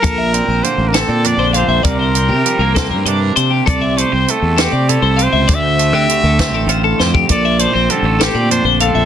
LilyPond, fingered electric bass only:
\new Staff \with { instrumentName = "Fingered electric bass" } { \clef bass \time 6/8 \key bes \lydian \tempo 4. = 66 bes,,8. bes,,16 r16 a,,8 bes,8 bes,,8 bes,,16 | c,8. c16 r16 c,8 g,16 g,8 c8 | c,8. c,16 r16 e,8 c8 c,8 cis,16 | d,8. d16 r16 d,8 a,,16 a,,8 f,8 |
bes,,8. bes,,16 r16 a,,8 bes,8 bes,,8 bes,,16 | }